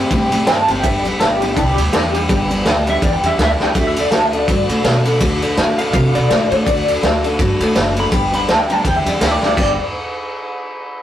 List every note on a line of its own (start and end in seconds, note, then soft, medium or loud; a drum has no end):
0.00 0.10 C4 medium
0.00 0.11 E4 medium
0.00 0.11 G4 medium
0.11 0.29 A2 loud
0.11 0.32 C3 medium
0.11 0.32 G3 medium
0.11 0.32 C4 medium
0.11 0.32 E4 medium
0.11 0.31 G4 loud
0.11 kick loud
0.11 ride medium
0.32 0.45 A2 medium
0.32 0.46 C4 soft
0.32 0.47 E4 medium
0.32 0.47 G4 medium
0.32 ride medium
0.47 0.66 G2 medium
0.47 0.68 G3 medium
0.47 0.68 C4 medium
0.47 0.68 E4 medium
0.47 0.67 G4 medium
0.47 0.70 A5 loud
0.47 snare loud
0.47 ride medium
0.68 0.84 F#1 medium
0.68 0.84 C4 medium
0.68 0.84 E4 medium
0.68 0.83 G4 medium
0.68 0.83 G5 medium
0.68 ride medium
0.83 1.15 G1 medium
0.83 1.05 G2 medium
0.83 1.05 D3 medium
0.83 1.04 G3 loud
0.83 1.04 B3 loud
0.83 1.03 D4 loud
0.83 1.03 G4 medium
0.83 0.95 E5 medium
0.83 kick loud
0.83 ride medium
0.95 1.07 D5 loud
1.04 1.18 G3 soft
1.04 1.19 B3 medium
1.04 1.19 D4 soft
1.04 1.20 G4 soft
1.04 1.19 B4 medium
1.04 ride soft
1.19 1.52 G1 medium
1.19 1.41 G3 medium
1.19 1.40 D4 medium
1.19 1.39 G4 medium
1.19 1.31 A4 loud
1.19 snare loud
1.19 ride medium
1.31 1.44 G4 medium
1.40 1.55 G3 soft
1.40 1.55 B3 medium
1.40 1.56 D4 medium
1.40 1.56 E4 loud
1.40 1.56 G4 medium
1.40 ride medium
1.56 1.75 C2 loud
1.56 1.77 G2 medium
1.56 1.78 D3 medium
1.56 1.77 G3 medium
1.56 1.77 B3 medium
1.56 1.68 D4 medium
1.56 1.76 D4 medium
1.56 1.75 G4 medium
1.56 kick loud
1.56 ride medium
1.68 2.39 G4 loud
1.76 1.91 D2 loud
1.76 1.91 G3 soft
1.76 1.92 B3 soft
1.76 1.92 D4 medium
1.76 1.92 G4 medium
1.76 ride medium
1.92 2.25 E2 medium
1.92 2.14 G3 medium
1.92 2.13 B3 medium
1.92 2.13 D4 medium
1.92 2.12 G4 medium
1.92 snare loud
1.92 ride loud
2.13 2.28 G3 soft
2.13 2.28 B3 soft
2.13 2.29 D4 medium
2.13 2.29 G4 medium
2.13 ride medium
2.29 2.61 G1 loud
2.29 2.50 G2 medium
2.29 2.50 D3 medium
2.29 2.51 G3 medium
2.29 2.50 B3 loud
2.29 2.49 D4 loud
2.29 2.49 G4 loud
2.29 kick loud
2.29 ride medium
2.50 2.64 G3 soft
2.50 2.65 B3 soft
2.50 2.66 D4 medium
2.50 2.66 G4 medium
2.50 ride medium
2.65 2.97 D2 medium
2.65 2.87 G3 medium
2.65 2.87 B3 medium
2.65 2.86 D4 medium
2.65 2.85 G4 medium
2.65 snare loud
2.65 ride medium
2.86 3.02 G3 medium
2.86 3.02 B3 medium
2.86 3.02 D4 medium
2.86 3.02 G4 medium
2.86 3.02 E5 loud
2.86 ride medium
3.02 3.21 E2 loud
3.02 3.24 G2 medium
3.02 3.24 D3 medium
3.02 3.24 G3 medium
3.02 3.23 B3 medium
3.02 3.23 D4 medium
3.02 3.22 G4 medium
3.02 3.13 D5 loud
3.02 kick loud
3.02 ride medium
3.13 3.26 G5 medium
3.23 3.37 E2 medium
3.23 3.38 G3 soft
3.23 3.39 B3 soft
3.23 3.39 D4 soft
3.23 3.38 G4 medium
3.23 3.37 E5 loud
3.23 ride medium
3.38 3.57 D2 medium
3.38 3.60 G3 medium
3.38 3.60 B3 medium
3.38 3.60 D4 medium
3.38 3.58 G4 medium
3.38 3.50 E5 loud
3.38 snare loud
3.38 ride medium
3.51 3.62 D5 medium
3.60 3.73 D2 medium
3.60 3.74 G3 medium
3.60 3.75 B3 soft
3.60 3.74 D4 medium
3.60 3.75 G4 medium
3.60 3.75 G5 medium
3.60 snare medium
3.74 4.07 D2 medium
3.74 3.96 D3 medium
3.74 3.96 A3 medium
3.74 3.96 D4 medium
3.74 3.96 F#4 medium
3.74 3.95 A4 medium
3.74 3.86 E5 medium
3.74 kick loud
3.74 ride medium
3.87 3.99 E5 loud
3.96 4.10 D4 soft
3.96 4.11 F#4 soft
3.96 4.12 A4 medium
3.96 4.11 D5 medium
3.96 ride medium
4.11 4.43 D2 medium
4.11 4.32 A3 medium
4.11 4.33 D4 medium
4.11 4.32 F#4 medium
4.11 4.31 A4 medium
4.11 4.23 A5 loud
4.11 snare loud
4.11 ride medium
4.24 4.35 E5 medium
4.32 4.47 D4 medium
4.32 4.47 F#4 medium
4.32 4.48 A4 medium
4.32 5.41 D5 medium
4.32 ride medium
4.48 4.66 G2 loud
4.48 4.69 D3 medium
4.48 4.69 A3 medium
4.48 4.69 D4 medium
4.48 4.68 F#4 medium
4.48 4.67 A4 medium
4.48 kick loud
4.48 ride medium
4.68 4.82 A2 loud
4.68 4.83 D4 medium
4.68 4.83 F#4 medium
4.68 4.84 A4 medium
4.68 ride medium
4.83 5.16 B2 medium
4.83 5.05 A3 medium
4.83 5.05 D4 medium
4.83 5.05 F#4 medium
4.83 5.03 A4 medium
4.83 snare loud
4.83 ride loud
5.05 5.19 D4 soft
5.05 5.20 F#4 medium
5.05 5.20 A4 medium
5.05 ride medium
5.20 5.52 D2 loud
5.20 5.42 D3 medium
5.20 5.42 A3 medium
5.20 5.41 D4 loud
5.20 5.41 F#4 loud
5.20 5.40 A4 loud
5.20 kick loud
5.20 ride loud
5.41 5.56 D4 soft
5.41 5.57 F#4 medium
5.41 5.57 A4 medium
5.41 ride medium
5.57 5.89 A2 loud
5.57 5.78 A3 medium
5.57 5.78 D4 medium
5.57 5.77 F#4 medium
5.57 5.77 A4 medium
5.57 snare loud
5.57 ride medium
5.78 5.92 D4 soft
5.78 5.93 F#4 medium
5.78 5.93 A4 medium
5.78 5.92 F5 loud
5.78 ride medium
5.93 6.12 C3 loud
5.93 6.15 D3 medium
5.93 6.15 A3 medium
5.93 6.15 D4 medium
5.93 6.14 F#4 medium
5.93 6.13 A4 medium
5.93 6.14 F5 medium
5.93 kick loud
5.93 ride medium
6.14 6.28 B2 medium
6.14 6.29 D4 soft
6.14 6.30 F#4 medium
6.14 6.30 A4 medium
6.14 6.50 D5 loud
6.14 ride medium
6.30 6.49 A2 loud
6.30 6.51 A3 medium
6.30 6.51 D4 medium
6.30 6.50 F#4 medium
6.30 6.49 A4 medium
6.30 snare loud
6.30 ride loud
6.51 6.65 A2 medium
6.51 6.65 D4 medium
6.51 6.66 F#4 medium
6.51 6.66 A4 medium
6.51 7.22 D5 loud
6.51 ride medium
6.66 6.98 D2 medium
6.66 6.87 D3 medium
6.66 6.88 A3 medium
6.66 6.88 D4 medium
6.66 6.87 F#4 medium
6.66 6.86 A4 medium
6.66 kick loud
6.66 ride medium
6.87 7.02 D4 soft
6.87 7.02 F#4 soft
6.87 7.03 A4 medium
6.87 ride medium
7.02 7.34 D2 medium
7.02 7.24 A3 medium
7.02 7.24 D4 medium
7.02 7.23 F#4 medium
7.02 7.22 A4 medium
7.02 snare loud
7.02 ride medium
7.24 7.38 D4 medium
7.24 7.39 F#4 medium
7.24 7.39 A4 medium
7.24 ride medium
7.39 7.57 G2 loud
7.39 7.60 D3 medium
7.39 7.60 A3 loud
7.39 7.61 D4 medium
7.39 7.60 F#4 loud
7.39 7.59 A4 loud
7.39 kick loud
7.39 ride medium
7.60 7.74 A2 loud
7.60 7.74 D4 medium
7.60 7.75 F#4 medium
7.60 7.75 A4 medium
7.60 ride medium
7.75 8.07 F#1 loud
7.75 7.96 A3 medium
7.75 7.97 D4 medium
7.75 7.96 F#4 medium
7.75 7.96 A4 medium
7.75 snare loud
7.75 ride medium
7.97 8.11 D4 soft
7.97 8.12 F#4 medium
7.97 8.12 A4 medium
7.97 8.23 B5 loud
7.97 ride medium
8.11 8.44 G1 loud
8.11 8.33 G2 medium
8.11 8.33 D3 medium
8.11 8.33 G3 medium
8.11 8.32 B3 loud
8.11 8.32 D4 medium
8.11 8.31 G4 medium
8.11 kick loud
8.11 ride medium
8.32 8.46 G3 soft
8.32 8.47 B3 soft
8.32 8.48 D4 medium
8.32 8.48 G4 medium
8.32 8.47 B5 loud
8.32 ride medium
8.47 8.80 D2 medium
8.47 8.69 G3 medium
8.47 8.69 B3 medium
8.47 8.68 D4 medium
8.47 8.67 G4 medium
8.47 8.58 A5 medium
8.47 snare loud
8.47 ride medium
8.59 8.72 G5 medium
8.69 8.84 G3 medium
8.69 8.84 B3 soft
8.69 8.84 D4 soft
8.69 8.84 G4 medium
8.69 8.84 A5 loud
8.69 ride medium
8.84 9.03 E2 loud
8.84 9.06 G2 medium
8.84 9.06 D3 medium
8.84 9.06 G3 medium
8.84 9.05 B3 medium
8.84 9.05 D4 medium
8.84 9.04 G4 medium
8.84 8.96 G5 loud
8.84 kick loud
8.84 ride medium
8.96 9.08 E5 medium
9.05 9.19 E2 medium
9.05 9.19 G3 soft
9.05 9.20 B3 soft
9.05 9.20 D4 medium
9.05 9.21 G4 medium
9.05 9.20 D5 medium
9.05 ride medium
9.20 9.39 D2 medium
9.20 9.42 G3 medium
9.20 9.42 B3 medium
9.20 9.42 D4 medium
9.20 9.41 G4 medium
9.20 9.31 E5 loud
9.20 snare loud
9.20 ride loud
9.32 9.55 D5 medium
9.42 9.55 D2 medium
9.42 9.57 G3 soft
9.42 9.58 B3 soft
9.42 9.58 D4 medium
9.42 9.57 G4 medium
9.42 snare medium
9.57 9.77 G1 medium
9.57 9.74 G2 medium
9.57 9.75 D3 medium
9.57 9.75 G3 medium
9.57 9.75 B3 loud
9.57 9.75 D4 medium
9.57 9.76 G4 medium
9.57 9.77 D5 medium
9.57 kick loud
9.57 crash loud